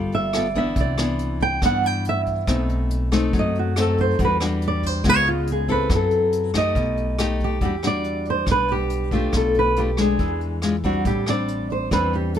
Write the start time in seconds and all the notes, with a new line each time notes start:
Already playing: G1 G3 B3 F4 A4
0.12 E5, closed hi-hat
0.33 B3 F4 A4, cross-stick, closed hi-hat
0.38 D5
0.55 E3 B3 D4 E5, kick, closed hi-hat
0.76 C2 C3, kick, closed hi-hat
0.80 D5
0.98 E3 B3 D4, cross-stick, closed hi-hat
1.19 closed hi-hat
1.40 G5, kick, closed hi-hat
1.62 G2 E3 B3 D4 F#5, kick, cross-stick, closed hi-hat
1.83 G5, closed hi-hat
2.05 closed hi-hat
2.09 E5
2.26 kick, closed hi-hat
2.47 B1 B2 A3 C4 D#4, kick, cross-stick, closed hi-hat
2.69 closed hi-hat
2.90 closed hi-hat
3.12 A3 C4 D#4, kick, cross-stick, closed hi-hat
3.33 F#2 F#3, kick, closed hi-hat
3.39 D#5
3.55 closed hi-hat
3.59 F#4
3.76 A3 C4 D#4, cross-stick, closed hi-hat
3.81 A4
3.98 C5, kick, closed hi-hat
4.19 E2 E3 G3 D4 F#4, kick, closed hi-hat
4.24 B4
4.40 G3 D4 F#4, cross-stick, closed hi-hat
4.62 closed hi-hat
4.68 D5
4.83 C5, kick, closed hi-hat
5.04 C#2 C#3 G#3 B3 F4, kick, cross-stick, closed hi-hat
5.09 C#5
5.26 F4, closed hi-hat
5.47 closed hi-hat
5.52 G#4
5.68 C4 E4 A4 B4, kick, closed hi-hat
5.90 F#2 F#3, kick, cross-stick, closed hi-hat
5.95 A4
6.11 closed hi-hat
6.32 closed hi-hat
6.54 A3 D#4 G4 D#5, kick, cross-stick, closed hi-hat
6.75 B1 B2, kick, closed hi-hat
6.97 closed hi-hat
7.19 A3 D#4 G4, cross-stick, closed hi-hat
7.40 kick, closed hi-hat
7.44 G4
7.61 E2 E3 G3 D4 F#4, kick, closed hi-hat
7.65 G4
7.83 G3 D4 F#4, cross-stick, closed hi-hat
7.87 D5
8.04 closed hi-hat
8.25 closed hi-hat
8.30 C5
8.46 B1 B2 G3 D4, kick, cross-stick, closed hi-hat
8.51 B4
8.68 G4, closed hi-hat
8.90 closed hi-hat
9.11 A3 D4 F4 G4, kick, closed hi-hat
9.33 B1 B2 A4, kick, cross-stick, closed hi-hat
9.54 closed hi-hat
9.59 B4
9.76 A3 D4 F4 G4, closed hi-hat
9.97 G#3 D4 G#4, cross-stick, closed hi-hat
10.19 E2 E3, kick, closed hi-hat
10.41 closed hi-hat
10.62 G#3 D4 F4, cross-stick, closed hi-hat
10.84 G3 C4 D4 F#4, kick, closed hi-hat
11.05 A1 A2 G4, kick, closed hi-hat
11.26 G3 C4 D4 D5, cross-stick, closed hi-hat
11.48 closed hi-hat
11.70 C5, closed hi-hat
11.91 E2 E3 G3 C4 D4 B4, kick, cross-stick, closed hi-hat
12.13 G4, closed hi-hat
12.34 closed hi-hat